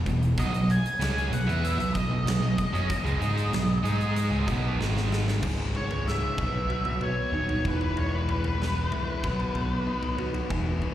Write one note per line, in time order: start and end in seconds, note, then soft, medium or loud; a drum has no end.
0.06 0.35 E1 medium
0.06 0.32 E2 medium
0.06 0.32 B2 medium
0.06 kick medium
0.06 closed hi-hat medium
0.22 closed hi-hat soft
0.38 0.52 B1 loud
0.38 0.53 B2 medium
0.38 0.53 F#3 loud
0.38 0.68 D#5 loud
0.38 kick loud
0.38 closed hi-hat loud
0.53 0.82 B1 medium
0.53 0.79 B2 medium
0.53 0.79 F#3 medium
0.53 closed hi-hat medium
0.70 1.33 G#5 loud
0.70 closed hi-hat medium
0.86 closed hi-hat medium
0.99 1.29 C#2 medium
0.99 1.31 C#3 medium
0.99 1.32 G#3 medium
0.99 1.32 C#4 loud
0.99 snare loud
0.99 closed hi-hat loud
1.18 closed hi-hat soft
1.31 1.46 B1 medium
1.31 1.48 B2 medium
1.31 1.45 F#3 medium
1.31 1.65 F#5 medium
1.31 closed hi-hat medium
1.46 1.77 E2 medium
1.46 1.78 E3 loud
1.46 1.78 B3 medium
1.46 1.78 E4 medium
1.46 closed hi-hat soft
1.64 1.93 E5 loud
1.64 closed hi-hat medium
1.78 2.08 B1 medium
1.78 2.04 B2 medium
1.78 2.04 F#3 medium
1.78 closed hi-hat soft
1.93 4.75 D#5 medium
1.93 kick medium
1.93 closed hi-hat medium
2.09 2.25 B1 medium
2.09 2.24 B2 medium
2.09 2.24 F#3 medium
2.25 2.41 B1 medium
2.25 2.40 B2 medium
2.25 2.40 F#3 medium
2.25 snare loud
2.25 closed hi-hat loud
2.41 2.57 B1 medium
2.41 2.55 B2 medium
2.41 2.58 F#3 medium
2.56 muted distorted electric guitar stroke medium
2.56 muted picked electric bass stroke soft
2.56 kick medium
2.56 closed hi-hat medium
2.72 2.89 F#2 medium
2.72 2.88 F#3 medium
2.72 2.88 C#4 medium
2.72 closed hi-hat soft
2.88 muted distorted electric guitar stroke medium
2.88 muted picked electric bass stroke soft
2.88 kick loud
2.88 closed hi-hat loud
3.04 3.20 C#2 loud
3.04 3.20 C#3 medium
3.04 3.19 G#3 loud
3.04 closed hi-hat soft
3.20 3.50 G#2 loud
3.20 3.51 G#3 medium
3.20 3.52 D#4 loud
3.20 3.52 G#4 loud
3.20 closed hi-hat medium
3.37 closed hi-hat soft
3.52 3.82 B1 medium
3.52 3.78 B2 medium
3.52 3.78 F#3 medium
3.52 snare loud
3.52 closed hi-hat medium
3.83 4.28 G#2 medium
3.83 4.30 G#3 loud
3.83 4.31 D#4 loud
3.83 4.31 G#4 loud
3.83 closed hi-hat medium
4.00 closed hi-hat soft
4.16 closed hi-hat medium
4.31 4.46 C#2 medium
4.31 4.46 C#3 medium
4.31 4.47 G#3 loud
4.47 4.77 B1 medium
4.47 4.78 B2 loud
4.47 4.78 F#3 loud
4.47 4.79 B3 loud
4.47 kick medium
4.47 closed hi-hat medium
4.78 5.38 G#1 loud
4.78 5.40 G#2 medium
4.78 5.41 D#3 loud
4.78 5.42 G#3 loud
4.78 snare medium
4.97 snare medium
5.12 snare medium
5.28 snare medium
5.41 5.73 C#1 loud
5.41 6.35 C#2 medium
5.41 6.37 C#2 medium
5.41 6.36 G#2 medium
5.41 6.37 C#3 medium
5.41 kick loud
5.41 floor tom medium
5.41 crash loud
5.74 6.38 G#2 medium
5.74 6.06 C#5 medium
5.74 floor tom medium
5.91 floor tom medium
6.05 6.21 C#1 medium
6.05 6.38 G#3 medium
6.05 6.99 E5 medium
6.05 snare medium
6.36 6.83 B1 loud
6.36 7.30 B2 medium
6.36 7.65 B2 medium
6.36 7.31 F#3 medium
6.36 7.34 B3 loud
6.36 kick loud
6.36 floor tom medium
6.69 7.65 F#4 medium
6.69 floor tom medium
6.85 7.00 B1 medium
6.85 floor tom medium
7.01 7.16 B1 medium
7.01 8.28 B3 medium
7.01 7.64 C#5 medium
7.01 floor tom medium
7.31 7.63 D#1 medium
7.31 7.62 B2 medium
7.31 7.63 F#3 medium
7.31 7.66 B3 medium
7.31 7.65 D#4 medium
7.49 floor tom medium
7.63 8.88 E1 loud
7.63 8.57 E2 medium
7.63 7.95 E2 medium
7.63 8.58 B2 loud
7.63 8.59 E3 loud
7.63 kick medium
7.63 floor tom medium
7.68 7.97 B4 medium
7.81 floor tom medium
7.96 9.23 E2 medium
7.96 8.15 C#5 medium
7.96 floor tom medium
8.15 8.29 B4 medium
8.28 9.24 E3 medium
8.28 10.16 B4 loud
8.28 floor tom medium
8.44 floor tom medium
8.58 9.21 E2 medium
8.58 9.21 B2 medium
8.58 9.22 E3 medium
8.58 9.55 B3 medium
8.58 snare medium
8.92 9.24 E4 medium
8.92 floor tom medium
9.22 9.39 B1 loud
9.22 10.16 B2 loud
9.22 10.50 B2 medium
9.22 10.17 F#3 medium
9.22 10.17 B3 loud
9.22 kick loud
9.22 floor tom medium
9.40 floor tom medium
9.55 9.85 B1 medium
9.55 10.81 B3 medium
9.55 floor tom medium
9.87 10.50 D#4 medium
10.03 floor tom medium
10.17 10.48 B2 medium
10.17 10.49 F#3 medium
10.17 10.51 B3 medium
10.17 10.51 F#4 medium
10.17 floor tom medium
10.34 floor tom medium
10.49 10.80 E1 loud
10.49 10.94 E2 medium
10.49 10.94 B2 medium
10.49 10.94 E3 medium
10.49 kick loud
10.49 floor tom medium
10.82 10.94 E3 medium
10.82 floor tom medium